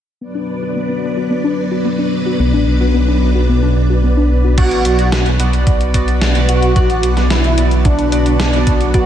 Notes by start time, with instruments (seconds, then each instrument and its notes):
0.21 string machine F#3 B3 D4 B4 D5, synth arpeggio sound B3
0.35 synth arpeggio sound D4
0.62 synth arpeggio sound F#4
0.76 synth arpeggio sound B3
0.89 synth arpeggio sound D4
1.17 synth arpeggio sound F#4
1.30 synth arpeggio sound B3
1.44 synth arpeggio sound D4
1.71 synth arpeggio sound F#4
1.85 synth arpeggio sound B3
1.99 synth arpeggio sound D4
2.26 synth arpeggio sound F#4
2.39 detuned saw bass B1, synth arpeggio sound B3
2.53 detuned saw bass A1, synth arpeggio sound D4
2.67 detuned saw bass B1
2.80 detuned saw bass B1, synth arpeggio sound F#4
2.94 detuned saw bass B1, synth arpeggio sound B3
3.08 detuned saw bass B1, synth arpeggio sound D4
3.21 detuned saw bass B1
3.35 detuned saw bass B1, synth arpeggio sound F#4
3.49 detuned saw bass B1, synth arpeggio sound B3
3.62 detuned saw bass B1, synth arpeggio sound D4
3.76 detuned saw bass B1
3.90 detuned saw bass B1, synth arpeggio sound F#4
4.03 detuned saw bass B1, synth arpeggio sound B3
4.17 detuned saw bass B1, synth arpeggio sound D4
4.31 detuned saw bass B1
4.44 detuned saw bass B1, synth arpeggio sound F#4
4.58 detuned saw bass B1, string machine F#3 B3 F#4 B4 F#5, analog polysynth B3 F#4 D5, analog synth lead F#4, kick, closed hi-hat, crash
4.71 detuned saw bass A1, closed hi-hat
4.85 detuned saw bass B1, closed hi-hat
4.98 detuned saw bass B1, analog polysynth B3 F#4 D5, closed hi-hat
5.12 detuned saw bass B1, snare, closed hi-hat
5.26 detuned saw bass B1, closed hi-hat
5.39 detuned saw bass B1, analog polysynth B3 F#4 D5, closed hi-hat
5.53 detuned saw bass B1, closed hi-hat
5.67 detuned saw bass B1, kick, closed hi-hat
5.80 detuned saw bass B1, closed hi-hat
5.94 detuned saw bass B1, analog polysynth B3 F#4 D5, kick, closed hi-hat
6.08 detuned saw bass B1, closed hi-hat
6.22 detuned saw bass B1, snare, closed hi-hat
6.35 detuned saw bass B1, analog polysynth B3 F#4 D5, closed hi-hat
6.49 detuned saw bass B1, analog synth lead F#4, closed hi-hat
6.62 detuned saw bass B1, closed hi-hat
6.76 detuned saw bass B1, analog polysynth B3 F#4 D5, kick, closed hi-hat
6.90 detuned saw bass A1, closed hi-hat
7.03 detuned saw bass B1, closed hi-hat
7.17 detuned saw bass B1, analog polysynth B3 F#4 D5, snare, closed hi-hat
7.30 detuned saw bass B1, analog synth lead E4, snare, closed hi-hat
7.44 detuned saw bass B1, closed hi-hat
7.58 detuned saw bass B1, analog polysynth B3 F#4 D5, closed hi-hat
7.71 detuned saw bass B1, closed hi-hat
7.85 detuned saw bass B1, analog synth lead D4, kick, closed hi-hat
7.99 detuned saw bass B1, closed hi-hat
8.12 detuned saw bass B1, analog polysynth B3 F#4 D5, closed hi-hat
8.26 detuned saw bass B1, closed hi-hat
8.40 detuned saw bass B1, snare, closed hi-hat
8.53 detuned saw bass B1, analog polysynth B3 F#4 D5, closed hi-hat
8.67 detuned saw bass B1, kick, closed hi-hat
8.80 detuned saw bass B1, closed hi-hat
8.94 detuned saw bass B1, analog polysynth B3 F#4 D5, analog synth lead F#4, kick, closed hi-hat